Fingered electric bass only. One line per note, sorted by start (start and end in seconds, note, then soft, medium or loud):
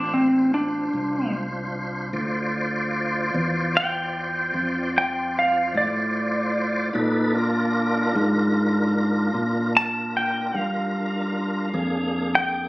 0.00 0.90 A1 medium
0.93 2.10 C2 medium
2.13 3.30 D2 medium
3.34 4.50 E2 medium
4.54 5.70 F2 medium
5.75 6.90 A2 medium
6.95 8.11 A#2 medium
8.15 9.31 G#2 medium
9.34 10.50 A#2 medium
10.54 11.70 G2 medium
11.74 12.69 F2 medium